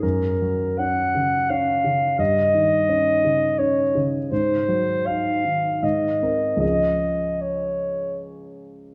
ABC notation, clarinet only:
X:1
M:3/4
L:1/8
Q:1/4=80
K:Db
V:1 name="Clarinet"
B2 g2 f2 | e4 d z | c2 f2 e2 | e2 d2 z2 |]